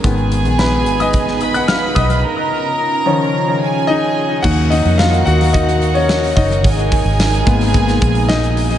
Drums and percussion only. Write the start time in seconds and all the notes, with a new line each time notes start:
0.04 kick, closed hi-hat
0.18 closed hi-hat
0.32 closed hi-hat
0.45 closed hi-hat
0.59 snare
0.86 closed hi-hat
1.00 closed hi-hat
1.13 kick, closed hi-hat
1.28 snare
1.41 closed hi-hat
1.55 closed hi-hat
1.68 snare
1.96 kick, closed hi-hat
2.10 closed hi-hat
4.44 kick, crash
4.72 hi-hat pedal, open hi-hat
4.86 open hi-hat
4.99 snare, hi-hat pedal, open hi-hat
5.13 hi-hat pedal, open hi-hat
5.27 hi-hat pedal, open hi-hat
5.41 hi-hat pedal, open hi-hat
5.54 kick, hi-hat pedal, open hi-hat
5.68 hi-hat pedal
5.82 hi-hat pedal, open hi-hat
5.95 open hi-hat
6.09 snare, hi-hat pedal, open hi-hat
6.23 hi-hat pedal, open hi-hat
6.37 kick, hi-hat pedal, open hi-hat
6.51 hi-hat pedal, open hi-hat
6.64 kick, hi-hat pedal, open hi-hat
6.79 hi-hat pedal
6.92 kick, hi-hat pedal, open hi-hat
7.06 open hi-hat
7.20 snare, hi-hat pedal, open hi-hat
7.33 hi-hat pedal, open hi-hat
7.47 kick, hi-hat pedal, open hi-hat
7.61 hi-hat pedal, open hi-hat
7.74 kick, hi-hat pedal, open hi-hat
7.88 snare, hi-hat pedal
8.02 kick, hi-hat pedal, open hi-hat
8.15 open hi-hat
8.29 snare, hi-hat pedal, open hi-hat
8.43 hi-hat pedal
8.57 hi-hat pedal, open hi-hat
8.70 open hi-hat